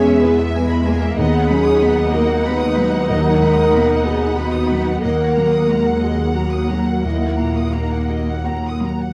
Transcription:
Already playing: E2 B2 G#3 B3 C#4 G#4 E5
0.08 E5
0.23 B3 E4 B4
0.40 E5
0.55 G#3 B3 B4 G#5
0.71 B5
0.87 G#3 A#3 G#5
1.03 E5
1.18 D#2 B3 D#4 G#4 D#5 F#5
1.35 F#5
1.50 F#3 C#4 B5
1.66 D#6
1.81 B3 B5
1.98 F#5
2.13 A#3 F#4 A#4 D#5
2.30 F#5
2.45 G#3 B3 B4 B5
2.61 D#6
2.77 F#3 B5
2.92 F#5
3.08 D#2 F#3 A#4 D#5
3.25 F#5
3.41 D#3 G#3 B5
3.58 D#6
3.73 B2 A#3 B5
3.90 F#5
4.05 B3 F#4 G#4 D#5
4.21 F#5
4.37 B3 F#4 B5
4.53 D#6
4.69 F#3 B5
4.85 F#5
5.02 D#2 A#3 A#4 D#5 F#5
5.19 F#5
5.36 F#3 A#5
5.52 D#6
5.69 G#3 A#3 A#5
5.86 F#5
6.02 F#4 G#4 D#5
6.20 F#5
6.35 F#3 A#3 F#4 A#5
6.53 D#6
6.70 F#3 G#4 A#5
6.87 F#4 F#5
7.04 D#2 A#3 E4 D#5
7.22 F#5
7.39 A#2 A#5
7.56 D#6
7.73 A#3 D#4 A#5
7.92 F#5
8.09 F#4 D#5
8.30 F#5
8.44 A#3 F#5 A#5
8.66 D#6
8.81 F#3 A#5
9.01 F#5

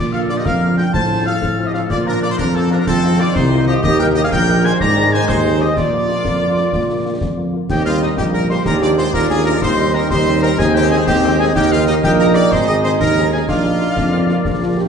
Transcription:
Already playing: A#2 F3 D4 D6
0.12 A#3 D4 F4 A4 F5 F6
0.29 A#3 D4 F4 D5 D6, snare
0.37 G4 D#5 D#6
0.45 F2 A#4 F5 F6, concert bass drum, snare
0.62 A#3 D4 F4
0.77 A#3 D4 F4 A#4 G5 G6, snare
0.93 A2 C4 C5 A5 A6, concert bass drum, snare
1.10 F3 C4 F4
1.25 F3 C4 F4 A4 F5 F6
1.42 A2, concert bass drum, snare
1.59 F3 C4 F4
1.66 G4 D#5 D#6
1.74 F3 C4 F4 A4 F5 F6, snare
1.90 A#2 F3 A#3 F4 D5 D6, concert bass drum, snare, crash
2.06 F3 D4 F4 A#4 A#5
2.22 F3 D4 F4 D5 D6, snare
2.30 D#4 C5 C6
2.38 F2 D4 A#4 A#5, concert bass drum, snare
2.55 F3 C4 D4 F4 A4 A5
2.70 F3 D4 F4 A#4 A#5, snare
2.78 D4 A#4 A#5
2.86 F2 D#3 C4 A4 A5, concert bass drum, snare
3.03 F3 D#4 F4
3.19 F3 D#4 F4 D5 D6
3.34 C2 D#4 C5 C6, concert bass drum, snare
3.51 F3 D#4 F4
3.66 F3 D#4 F4 G4 D#5 D#6, snare
3.83 D#2 A#3 G4 D#5 D#6, concert bass drum, snare, crash
3.99 A#3 D#4 G4 A#4 G5 G6
4.16 A#3 D#4 G4 D#5 D#6, snare
4.23 G#4 F5 F6
4.32 A#1 A#4 G5 G6, concert bass drum, snare
4.48 A#3 D#4 G4
4.64 A#3 D#4 G4 C5 G#5 G#6, snare
4.80 G#2 D#3 G#3 D5 A#5 A#6, concert bass drum, snare
4.96 C4 D#4 G#4
5.12 C4 D#4 G#4 C5 G#5 G#6
5.28 D#2 D#4 C5 C6, concert bass drum, snare
5.45 C4 D#4 G#4
5.60 C4 D#4 G4 G#4 D#5 D#6, snare
5.76 A#2 F3 A#3 F4 D5 D6, concert bass drum, snare, crash
5.92 A#3 F4
6.09 A#3 F4, snare
6.25 F2, concert bass drum, snare
6.41 A#3 F4
6.57 A#3 F4, snare
6.73 A#2, concert bass drum, snare
6.89 A#3 F4
7.05 A#3 F4
7.21 F2, concert bass drum, snare
7.37 A#3 F4
7.53 A#3 F4
7.69 D#2 G3 A#3 C4 G4 D#5 G5, concert bass drum, snare, crash
7.85 G3 A#3 D#4 F4 F5, snare
8.01 G3 A#3 D#4 D#5, snare
8.17 A#1 A#3 G4 D#5 G5, concert bass drum, snare
8.33 G3 A#3 D#4 A#4 A#5, snare
8.49 G3 A#3 D#4 C5 C6, snare
8.66 D#2 G#3 D4 G4 G#4 A#4 D5 A#5, concert bass drum, snare
8.82 G#3 D4 F4 D5 D6
8.97 G#3 D4 F4 C5 C6, snare
9.13 D#2 F4 G#4 A#4 D5 A#5, concert bass drum, snare
9.30 G#3 D4 F4 G#4 G#5
9.46 G#3 D4 F4 A#4 A#5
9.61 D#2 G3 C4 D#4 G4 C5 D#5 C6, concert bass drum, snare, crash
9.78 G3 C4 D#4, snare
9.94 G3 C4 D#4 A#4 A#5, snare
10.10 D#2 G4 C5 D#5 C6, concert bass drum, snare
10.27 G3 C4 D#4, snare
10.42 G3 C4 D#4 A#4 A#5, snare
10.58 D#2 G#3 C4 G#4 C5 D#5 G#5, concert bass drum, snare
10.74 G#3 C4 D#4 G4 G5
10.91 G#3 C4 D#4 G#4 G#5, snare
11.07 D#2 C4 G4 G5, concert bass drum, snare
11.23 G#3 C4 D#4
11.39 G#3 C4 D#4 G#4 G#5
11.55 D#2 A#3 D#4 G4 A#4 D#5 G5, concert bass drum, snare, crash
11.71 A#3 D#4 F4 G4 F5, snare
11.87 A#3 D#4 G4 D#5, snare
12.03 A#1 A#3 G4 A#4 D#5 G5, concert bass drum, snare
12.19 A#3 D#4 G4 A#4 A#5, snare
12.34 A#3 D#4 G4 D5 D6, snare
12.51 G#1 G#3 C4 G#4 C5 D#5 C6, concert bass drum, snare
12.67 C4 D#4 G#4 D#5 D#6
12.84 C4 D#4 G#4 C5 C6, snare
12.99 D#2 D#4 A#4 A#5, concert bass drum, snare
13.17 C4 D#4 G#4
13.32 C4 D#4 G#4 G#5
13.48 A#1 A#3 D4 F4 A#4 D5 F5, concert bass drum, snare, crash
13.64 A#3 D4 F4, snare
13.81 A#3 D4 F4, snare
13.96 F2 D4, concert bass drum, snare
14.13 A#3 C4 D4 F4, snare
14.29 A#3 D4 F4, snare
14.44 A#1 D4, concert bass drum, snare
14.61 A#3 D4 F4
14.77 A#3 D4 F4 G4

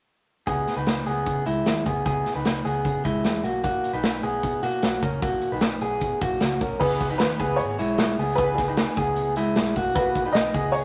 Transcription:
0.47 C#2 B3 G#4, kick, closed hi-hat
0.67 snare, closed hi-hat
0.76 C#2 D#4 B4
0.87 snare, closed hi-hat
1.06 C#2 B3 G#4, closed hi-hat
1.26 C#3, kick, closed hi-hat
1.46 C#2 G#3 E4, closed hi-hat
1.66 snare, closed hi-hat
1.86 C#2 B3 G#4, kick, closed hi-hat
2.06 C#2 B3 G#4, kick, closed hi-hat
2.26 snare, closed hi-hat
2.35 C#2 D#4 B4
2.45 snare, closed hi-hat
2.65 C#2 B3 G#4, closed hi-hat
2.85 C#3, kick, closed hi-hat
3.05 C#2 G#3 E4, kick, closed hi-hat
3.24 E2, snare, closed hi-hat
3.44 B1 A#3 F#4, closed hi-hat
3.64 A#3 F#4, kick, closed hi-hat
3.84 closed hi-hat
3.93 B1 D#4 B4
4.03 snare, closed hi-hat
4.23 B1 B3 G#4, closed hi-hat
4.43 B2, kick, closed hi-hat
4.63 B2 A#3 F#4, closed hi-hat
4.83 B1, snare, closed hi-hat
5.03 C#2 C#4 A#4, kick, closed hi-hat
5.22 B1 A#3 F#4, kick, closed hi-hat
5.42 closed hi-hat
5.52 B1 D#4 B4
5.61 snare, closed hi-hat
5.81 B1 B3 G#4, closed hi-hat
6.01 B2, kick, closed hi-hat
6.21 B1 A#3 F#4, kick, closed hi-hat
6.40 C#2, snare, closed hi-hat
6.61 C#4 A#4, kick, closed hi-hat
6.80 C#2 B3 G#4 B4, kick, crash
7.01 kick, closed hi-hat
7.10 D#4 B4
7.18 D#2 B4, snare, closed hi-hat
7.39 C#2 B3 G#4, kick, closed hi-hat
7.56 G#1 C#5, closed hi-hat
7.79 B1 G#3 E4, closed hi-hat
7.98 B1, snare, closed hi-hat
8.19 C#2 B3 G#4, open hi-hat
8.35 C#2 G#4 B4, kick, closed hi-hat
8.40 B3
8.55 G#4, kick, snare, closed hi-hat
8.68 D#4 B4
8.77 snare, closed hi-hat
8.96 C#2 B3 G#4, kick, closed hi-hat
9.16 closed hi-hat
9.36 G#3 E4, closed hi-hat
9.56 B1, snare, closed hi-hat
9.76 B1 A#3 F#4, kick, open hi-hat
9.95 A#3 F#4 B4, kick, closed hi-hat
10.15 kick, closed hi-hat
10.25 D#4 B4
10.33 B1 D#5, snare, closed hi-hat
10.54 C#2 B3 G#4, kick, closed hi-hat
10.72 C#5, closed hi-hat

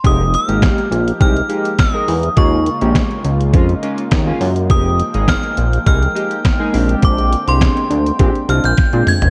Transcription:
0.04 F1 F3 G#3 A#3 D#4 G4 D#6, kick, closed hi-hat
0.34 F6, closed hi-hat
0.48 G#1 G#3 A#3 D#4 G4, closed hi-hat
0.62 kick, snare, clap, closed hi-hat
0.78 closed hi-hat
0.91 A#1, closed hi-hat
1.08 closed hi-hat
1.20 C2 G#3 A#3 D#4 G4 F6, kick, closed hi-hat
1.36 closed hi-hat
1.49 G#3 A#3 D#4 G4, closed hi-hat
1.65 closed hi-hat
1.79 D#6, kick, snare, clap, closed hi-hat
1.94 G#3 A#3 D#4 A#4
2.08 E2, open hi-hat
2.23 closed hi-hat
2.36 D#2 C#3 G#3 A#3 C#4 F4 C#6, kick, closed hi-hat
2.66 closed hi-hat
2.81 A#1 G#3 A#3 C#4 G4, closed hi-hat
2.95 kick, snare, clap, closed hi-hat
3.11 closed hi-hat
3.25 C#2, closed hi-hat
3.41 closed hi-hat
3.53 F2 G#3 A#3 C#4 F4, kick, closed hi-hat
3.69 closed hi-hat
3.83 G#3 A#3 C#4 F4, closed hi-hat
3.98 closed hi-hat
4.11 D#2, kick, snare, clap, closed hi-hat
4.27 G#3 A#3 C#4 F4
4.41 F#2, open hi-hat
4.56 closed hi-hat
4.69 F1 F3 G#3 A#3 D#4 G4 G5 D#6, kick, closed hi-hat
5.00 closed hi-hat
5.14 G#1 G#3 A#3 D#4 G#4, closed hi-hat
5.28 F6, kick, snare, clap, closed hi-hat
5.43 closed hi-hat
5.57 A#1, closed hi-hat
5.73 closed hi-hat
5.86 C2 G#3 A#3 D#4 G#4 F6, kick, closed hi-hat
6.03 closed hi-hat
6.15 G#3 A#3 D#4 G4, closed hi-hat
6.31 closed hi-hat
6.45 kick, snare, clap, closed hi-hat
6.59 G#3 A#3 D#4 G#4
6.73 A#1 D3 G#3 C4 D4 G4, open hi-hat
6.89 closed hi-hat
7.02 A#1 D6, kick, closed hi-hat
7.18 closed hi-hat
7.32 closed hi-hat
7.47 C2 G#3 C4 D4 G4 C6, closed hi-hat
7.61 kick, snare, clap, closed hi-hat
7.77 closed hi-hat
7.90 D2, closed hi-hat
8.06 closed hi-hat
8.19 A#1 G#3 C4 D4 G4, kick, closed hi-hat
8.35 closed hi-hat
8.48 C2 G#3 C4 D4 F4 F6, closed hi-hat
8.64 A#1 G6, closed hi-hat
8.77 kick, snare, closed hi-hat
8.93 A#2 G#3 C4 D4 F4, closed hi-hat
9.07 G#6, mid tom, open hi-hat
9.22 F#1, closed hi-hat, floor tom

